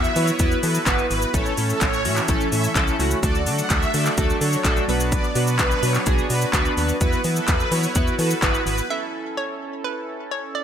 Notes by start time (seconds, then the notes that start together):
Already playing: F#3 B3 E4 F#4 B4 E5
0.04 shaker
0.16 E3 B3 E4 F#4 B4 C#5, open hi-hat, shaker
0.27 shaker
0.39 E2 B3 E4 F#4 B4, kick, closed hi-hat, shaker
0.51 shaker
0.63 E3 B3 E4 F#4 A4 B4, open hi-hat, shaker
0.75 shaker
0.86 G1 B3 E4 F#4 B4, kick, clap, closed hi-hat, shaker
0.98 shaker
1.10 G#1 B3 E4 F#4 B4, open hi-hat, shaker
1.22 shaker
1.34 A1 E3 A3 C#4 E4 A4 C#5, kick, closed hi-hat, shaker
1.46 shaker
1.57 A2 A3 C#4 E4 A4, open hi-hat, shaker
1.69 A4, shaker
1.81 A1 A3 C#4 E4 A4 C#5, kick, clap, closed hi-hat, shaker
1.93 shaker
2.05 A2 A3 C#4 E4 F#4 E5, open hi-hat, shaker
2.17 clap, shaker
2.28 A1 A3 C#4 E4 A4, kick, closed hi-hat, shaker
2.41 shaker
2.52 A2 A3 C#4 E4 A4 E5, open hi-hat, shaker
2.64 shaker
2.75 C2 A3 C#4 E4 A4, kick, clap, closed hi-hat, shaker
2.88 shaker
2.99 C#2 A3 C#4 E4 F#4, open hi-hat, shaker
3.11 shaker
3.23 D2 F#3 A3 D4 F#4 A4 D5, kick, closed hi-hat, shaker
3.35 shaker
3.46 D3 A3 D4 F#4 A4, open hi-hat, shaker
3.58 F#5, shaker
3.70 D2 A3 D4 F#4 A4 E5, kick, clap, closed hi-hat, shaker
3.82 shaker
3.94 D3 A3 D4 F#4 A4 D5, open hi-hat, shaker
4.06 clap, shaker
4.17 D2 A3 D4 F#4 A4, kick, closed hi-hat, shaker
4.30 shaker
4.41 D3 A3 D4 F#4 A4 C#5, open hi-hat, shaker
4.53 shaker
4.65 A#1 A3 D4 F#4 A4, kick, clap, closed hi-hat, shaker
4.77 shaker
4.88 B1 B3 D4 F#4 B4, open hi-hat, shaker
5.00 shaker
5.12 D5, kick, closed hi-hat, shaker
5.24 shaker
5.35 B2 B3 D4 F#4 B4, open hi-hat, shaker
5.47 B4, shaker
5.59 B1 B3 D4 F#4 B4, kick, clap, closed hi-hat, shaker
5.71 shaker
5.83 B2 B3 D4 F#4 B4 C#5, open hi-hat, shaker
5.94 clap, shaker
6.06 B1 B3 D4 F#4 G#4, kick, closed hi-hat, shaker
6.18 shaker
6.30 B2 B3 D4 F#4 B4, open hi-hat, shaker
6.41 shaker
6.53 D2 B3 D4 F#4 B4, kick, clap, closed hi-hat, shaker
6.65 shaker
6.77 D#2 B3 D4 F#4 B4, open hi-hat, shaker
6.89 shaker
7.01 E2 B3 E4 F#4 B4, kick, closed hi-hat, shaker
7.13 shaker
7.24 E3 B3 E4 F#4 B4, open hi-hat, shaker
7.36 A4, shaker
7.48 E2 B3 E4 F#4 B4, kick, clap, closed hi-hat, shaker
7.60 shaker
7.71 E3 B3 E4 F#4 B4 C#5, open hi-hat, shaker
7.83 shaker
7.95 E2 B3 E4 F#4 B4, kick, closed hi-hat, shaker
8.07 shaker
8.19 E3 B3 E4 F#4 A4 B4, clap, open hi-hat, shaker
8.30 shaker
8.42 G1 B3 E4 F#4 B4, kick, clap, closed hi-hat, shaker
8.54 shaker
8.66 G#1 B3 E4 F#4 B4, open hi-hat, shaker
8.78 shaker
8.89 C#4 E4 A4 E5
9.37 C#5
9.84 B4
10.31 C#5
10.55 D5